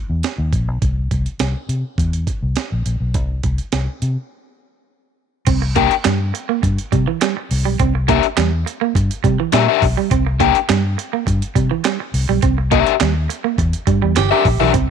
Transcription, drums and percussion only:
0.23 snare medium
0.23 closed hi-hat medium
0.53 kick medium
0.53 closed hi-hat medium
0.82 kick loud
0.82 closed hi-hat medium
1.11 kick medium
1.11 closed hi-hat medium
1.26 closed hi-hat soft
1.39 snare loud
1.39 closed hi-hat medium
1.69 closed hi-hat medium
1.98 kick medium
1.98 closed hi-hat medium
2.13 closed hi-hat medium
2.27 kick medium
2.27 closed hi-hat medium
2.56 snare medium
2.56 closed hi-hat medium
2.86 closed hi-hat medium
3.14 kick loud
3.14 closed hi-hat medium
3.43 kick medium
3.43 closed hi-hat medium
3.58 closed hi-hat soft
3.72 snare medium
3.72 closed hi-hat medium
4.02 closed hi-hat medium
5.47 kick loud
5.47 closed hi-hat medium
5.47 crash loud
5.76 kick medium
5.76 closed hi-hat medium
5.91 closed hi-hat medium
6.04 snare loud
6.04 clap medium
6.04 closed hi-hat medium
6.35 closed hi-hat medium
6.63 kick medium
6.63 closed hi-hat medium
6.78 closed hi-hat medium
6.92 kick medium
6.92 closed hi-hat medium
7.21 snare loud
7.21 clap medium
7.21 closed hi-hat medium
7.51 open hi-hat medium
7.79 kick loud
7.79 closed hi-hat medium
8.09 kick medium
8.09 closed hi-hat medium
8.23 closed hi-hat soft
8.37 snare loud
8.37 clap medium
8.37 closed hi-hat medium
8.67 closed hi-hat medium
8.95 kick medium
8.95 closed hi-hat loud
9.11 closed hi-hat medium
9.24 kick loud
9.24 closed hi-hat medium
9.52 snare loud
9.52 clap medium
9.52 closed hi-hat medium
9.82 kick medium
9.82 open hi-hat medium
10.11 kick loud
10.11 closed hi-hat medium
10.40 kick medium
10.40 closed hi-hat medium
10.55 closed hi-hat medium
10.69 snare loud
10.69 clap loud
10.69 closed hi-hat medium
10.99 closed hi-hat medium
11.27 kick medium
11.27 closed hi-hat medium
11.42 closed hi-hat medium
11.56 kick medium
11.56 closed hi-hat medium
11.84 snare loud
11.84 clap medium
11.84 closed hi-hat medium
12.14 open hi-hat medium
12.42 kick loud
12.42 closed hi-hat medium
12.72 kick medium
12.72 closed hi-hat medium
12.86 closed hi-hat medium
13.00 snare loud
13.00 clap medium
13.00 closed hi-hat medium
13.30 closed hi-hat medium
13.58 kick medium
13.58 closed hi-hat medium
13.73 closed hi-hat medium
13.87 kick loud
13.87 closed hi-hat medium
14.16 snare loud
14.16 clap medium
14.16 closed hi-hat medium
14.45 kick medium
14.45 open hi-hat medium
14.74 kick loud
14.74 closed hi-hat medium

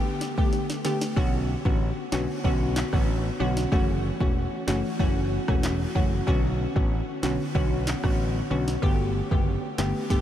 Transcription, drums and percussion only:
0.21 snare medium
0.38 kick medium
0.53 snare soft
0.70 snare medium
0.85 snare medium
1.01 snare medium
1.17 kick loud
1.65 kick loud
2.12 snare loud
2.12 clap medium
2.44 kick medium
2.76 snare loud
2.76 clap medium
2.93 kick medium
2.93 cross-stick medium
3.57 snare medium
3.72 kick loud
4.21 kick loud
4.68 snare loud
4.68 clap medium
5.00 kick medium
5.48 kick medium
5.48 cross-stick loud
5.63 snare loud
5.63 clap medium
5.96 kick medium
6.27 kick loud
6.76 kick loud
7.23 snare loud
7.23 clap medium
7.55 kick medium
7.87 snare loud
7.87 clap medium
8.04 kick medium
8.04 cross-stick loud
8.68 snare medium
8.83 kick loud
9.31 kick loud
9.78 snare loud
9.78 clap medium
10.10 kick medium
10.10 snare medium

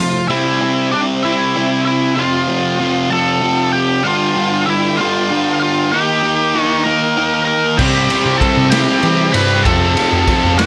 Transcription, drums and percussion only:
7.79 kick loud
7.79 crash loud
8.10 ride medium
8.41 kick medium
8.41 ride medium
8.72 snare loud
8.72 ride loud
9.03 ride medium
9.34 ride medium
9.65 kick loud
9.65 ride loud
9.97 ride medium
10.27 kick loud
10.27 ride loud
10.59 snare loud
10.59 ride loud

